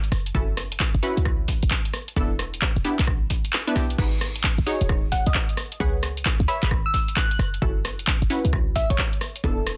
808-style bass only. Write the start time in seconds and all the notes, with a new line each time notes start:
0.12 F#1
0.35 F#1
0.95 F#1
1.17 C#2
1.63 A1
2.16 E1
2.76 E1
2.99 B1
3.76 B1
3.98 G#1
4.58 G#1
4.81 D#1
5.27 B1
5.80 C#2
6.40 C#2
6.63 G#1
7.39 F#1
7.62 F#1
8.22 F#1
8.45 C#2
8.90 A1
9.44 E1